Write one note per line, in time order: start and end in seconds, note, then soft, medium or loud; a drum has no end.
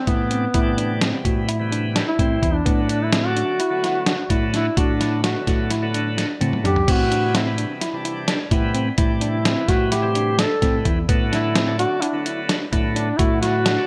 0.07 0.46 A2 medium
0.07 0.44 C3 medium
0.07 0.45 E3 medium
0.07 0.45 G3 medium
0.07 1.25 B3 medium
0.07 0.45 D4 medium
0.07 0.21 E4 medium
0.07 kick medium
0.07 closed hi-hat medium
0.31 0.45 C4 medium
0.31 closed hi-hat medium
0.54 1.12 A2 medium
0.54 1.00 C3 medium
0.54 1.00 E3 medium
0.54 1.01 G3 medium
0.54 1.01 D4 medium
0.54 0.69 E4 medium
0.54 kick loud
0.54 closed hi-hat medium
0.78 0.92 D4 medium
0.78 closed hi-hat medium
1.01 1.15 C4 medium
1.01 snare medium
1.01 closed hi-hat medium
1.13 1.50 C3 medium
1.13 1.50 E3 medium
1.13 1.50 G3 medium
1.13 1.50 B3 medium
1.25 2.01 A2 medium
1.25 1.39 F#4 medium
1.25 kick medium
1.25 closed hi-hat medium
1.49 1.63 E4 medium
1.49 closed hi-hat medium
1.59 2.05 C3 medium
1.59 2.05 E3 medium
1.59 2.06 G3 medium
1.59 2.06 B3 medium
1.71 1.86 D4 medium
1.71 closed hi-hat medium
1.96 2.09 D4 medium
1.96 snare loud
1.96 closed hi-hat medium
2.08 2.56 E4 medium
2.19 2.38 A2 medium
2.19 2.56 C3 medium
2.19 2.56 E3 medium
2.19 2.56 G3 medium
2.19 2.33 C4 medium
2.19 2.56 C4 medium
2.19 kick medium
2.19 closed hi-hat medium
2.42 2.61 E2 medium
2.42 2.57 E4 medium
2.42 kick medium
2.42 closed hi-hat medium
2.54 3.05 D4 medium
2.65 3.42 A2 medium
2.65 3.11 D3 medium
2.65 3.11 F#3 medium
2.65 3.11 A3 medium
2.65 2.79 B3 medium
2.65 3.12 B3 medium
2.65 kick medium
2.65 closed hi-hat medium
2.89 3.03 D4 medium
2.89 closed hi-hat medium
3.03 3.28 E4 medium
3.13 3.27 C4 medium
3.13 snare loud
3.13 closed hi-hat medium
3.24 3.61 D3 medium
3.24 3.61 F#3 medium
3.24 3.61 A3 medium
3.24 3.61 D4 medium
3.24 4.43 F#4 loud
3.36 3.50 D4 medium
3.36 closed hi-hat medium
3.60 3.74 E4 medium
3.60 closed hi-hat medium
3.70 4.16 D3 medium
3.70 4.16 F#3 medium
3.70 4.17 A3 medium
3.70 4.17 B3 medium
3.83 3.97 E4 medium
3.83 snare soft
3.83 closed hi-hat medium
4.06 4.21 D4 medium
4.06 snare medium
4.06 closed hi-hat medium
4.29 4.68 A2 medium
4.29 4.66 D3 medium
4.29 4.66 F#3 medium
4.29 4.67 A3 medium
4.29 4.67 B3 medium
4.29 4.44 E4 medium
4.29 kick medium
4.29 closed hi-hat medium
4.54 4.68 D4 medium
4.54 4.76 E4 medium
4.54 snare soft
4.54 closed hi-hat medium
4.76 5.34 A2 medium
4.76 5.22 D3 medium
4.76 5.22 F#3 medium
4.76 5.23 A3 medium
4.76 5.23 B3 medium
4.76 5.21 D4 medium
4.76 4.91 F#4 medium
4.76 kick medium
4.76 closed hi-hat medium
5.00 5.14 E4 medium
5.00 snare soft
5.00 closed hi-hat medium
5.23 5.38 D4 medium
5.23 5.46 F#4 medium
5.23 snare loud
5.23 closed hi-hat medium
5.35 5.72 D3 medium
5.35 5.72 F#3 medium
5.35 5.72 A3 medium
5.35 5.72 B3 medium
5.47 6.23 A2 medium
5.47 5.62 F#4 medium
5.47 kick medium
5.47 snare soft
5.47 closed hi-hat medium
5.70 5.85 E4 medium
5.70 snare soft
5.70 closed hi-hat medium
5.82 6.28 D3 medium
5.82 6.28 F#3 medium
5.82 6.28 A3 medium
5.82 6.29 B3 medium
5.94 6.08 D4 medium
5.94 closed hi-hat medium
6.17 6.31 D4 medium
6.17 snare medium
6.17 closed hi-hat medium
6.41 6.60 A2 medium
6.41 6.77 D3 medium
6.41 6.77 F#3 medium
6.41 6.78 A3 medium
6.41 6.78 B3 medium
6.41 6.55 C4 medium
6.41 closed hi-hat medium
6.41 high tom medium
6.53 mid tom medium
6.64 6.83 F#2 medium
6.64 6.78 D4 medium
6.64 6.92 G4 loud
6.64 closed hi-hat medium
6.64 mid tom medium
6.76 floor tom medium
6.87 7.64 A2 medium
6.87 7.33 C3 medium
6.87 7.34 E3 medium
6.87 7.33 G3 medium
6.87 7.34 B3 medium
6.87 7.01 C4 medium
6.87 7.37 F#4 loud
6.87 kick loud
6.87 closed hi-hat medium
6.87 crash medium
7.11 7.25 D4 medium
7.11 closed hi-hat medium
7.34 7.48 C4 medium
7.34 7.59 E4 medium
7.34 snare medium
7.34 closed hi-hat medium
7.46 7.83 C3 medium
7.46 7.83 E3 medium
7.46 7.83 G3 medium
7.46 7.83 B3 medium
7.58 7.72 D4 medium
7.58 closed hi-hat medium
7.81 7.95 E4 medium
7.81 snare soft
7.81 closed hi-hat medium
7.93 8.38 C3 medium
7.93 8.39 E3 medium
7.93 8.39 G3 medium
7.93 8.39 D4 loud
8.05 8.19 E4 medium
8.05 closed hi-hat medium
8.28 8.42 D4 medium
8.28 snare loud
8.28 closed hi-hat medium
8.51 8.89 A2 medium
8.51 8.88 C3 medium
8.51 8.89 E3 medium
8.51 8.89 G3 medium
8.51 8.89 B3 medium
8.51 8.66 E4 medium
8.51 kick medium
8.51 closed hi-hat medium
8.75 8.89 C4 medium
8.75 closed hi-hat medium
8.97 9.55 A2 medium
8.97 9.43 C3 medium
8.97 9.44 E3 medium
8.97 9.44 G3 medium
8.97 9.44 D4 medium
8.97 9.12 E4 medium
8.97 kick loud
8.97 closed hi-hat medium
9.21 9.36 D4 medium
9.21 9.70 E4 medium
9.21 closed hi-hat medium
9.45 9.59 C4 medium
9.45 snare loud
9.45 closed hi-hat medium
9.56 9.93 C3 medium
9.56 9.93 E3 medium
9.56 9.93 G3 medium
9.56 9.94 B3 medium
9.68 10.44 A2 medium
9.68 9.94 F#4 medium
9.68 9.83 F#4 medium
9.68 kick medium
9.68 snare soft
9.68 closed hi-hat medium
9.92 10.06 E4 medium
9.92 10.42 G4 medium
9.92 snare soft
9.92 closed hi-hat medium
10.02 10.48 C3 medium
10.02 10.49 E3 medium
10.02 10.49 G3 medium
10.02 10.49 C4 medium
10.15 10.29 D4 medium
10.15 closed hi-hat medium
10.39 10.53 D4 medium
10.39 10.87 A4 medium
10.39 snare loud
10.39 closed hi-hat medium
10.62 10.82 A2 medium
10.62 10.98 C3 medium
10.62 10.99 E3 medium
10.62 10.99 G3 medium
10.62 10.99 B3 medium
10.62 10.76 C4 medium
10.62 kick medium
10.62 snare soft
10.62 closed hi-hat medium
10.85 11.05 E2 medium
10.85 10.99 E4 medium
10.85 kick medium
10.85 closed hi-hat medium
11.09 11.85 A2 medium
11.09 11.54 D3 medium
11.09 11.54 F#3 medium
11.09 11.55 A3 medium
11.09 11.23 B3 medium
11.09 11.55 B3 medium
11.09 kick loud
11.09 closed hi-hat medium
11.32 11.46 D4 medium
11.32 11.77 E4 medium
11.32 snare soft
11.32 closed hi-hat medium
11.55 11.70 C4 medium
11.55 snare loud
11.55 closed hi-hat medium
11.67 12.04 D3 medium
11.67 12.04 F#3 medium
11.67 12.04 A3 medium
11.67 12.04 D4 medium
11.79 11.94 D4 medium
11.79 12.03 F#4 loud
11.79 closed hi-hat medium
12.01 12.25 D4 medium
12.01 12.17 E4 medium
12.01 closed hi-hat medium
12.12 12.59 D3 medium
12.12 12.59 F#3 medium
12.12 12.59 A3 medium
12.12 12.60 B3 medium
12.26 12.40 E4 medium
12.26 closed hi-hat medium
12.49 12.64 D4 medium
12.49 snare loud
12.49 closed hi-hat medium
12.72 13.11 A2 medium
12.72 13.09 D3 medium
12.72 13.09 F#3 medium
12.72 13.09 A3 medium
12.72 13.10 B3 medium
12.72 12.87 E4 medium
12.72 kick medium
12.72 closed hi-hat medium
12.96 13.19 D4 medium
12.96 13.10 D4 medium
12.96 closed hi-hat medium
13.17 13.76 A2 loud
13.17 13.65 D3 medium
13.17 13.65 F#3 medium
13.17 13.65 A3 medium
13.17 13.41 E4 medium
13.17 13.33 F#4 medium
13.17 kick loud
13.17 closed hi-hat medium
13.21 13.66 B3 medium
13.42 13.56 E4 medium
13.42 13.87 F#4 loud
13.42 snare soft
13.42 closed hi-hat medium
13.65 13.80 D4 medium
13.65 snare loud
13.65 closed hi-hat medium
13.77 13.87 D3 medium
13.77 13.87 F#3 medium
13.77 13.87 A3 medium
13.77 13.87 D4 medium